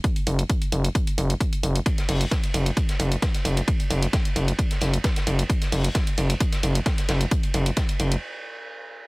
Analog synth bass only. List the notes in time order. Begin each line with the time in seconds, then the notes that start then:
0.27 F#1
0.72 F#1
1.18 F#1
1.63 F#1
2.09 F#1
2.54 F#1
3.00 F#1
3.45 F#1
3.90 F#1
4.36 F#1
4.81 F#1
5.27 F#1
5.72 F#1
6.18 F#1
6.63 F#1
7.09 F#1
7.54 F#1
8.00 F#1